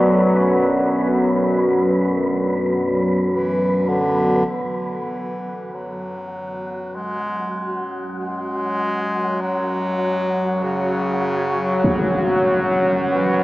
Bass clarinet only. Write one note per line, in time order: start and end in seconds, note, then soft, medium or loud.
3.27 3.90 E3 medium
3.89 4.53 D3 medium
4.51 5.75 E3 medium
5.74 6.97 F#3 medium
6.96 7.90 G#3 loud
8.19 9.43 G#3 loud
9.41 10.65 F#3 loud
10.63 12.80 C#3 loud
13.09 13.44 E3 medium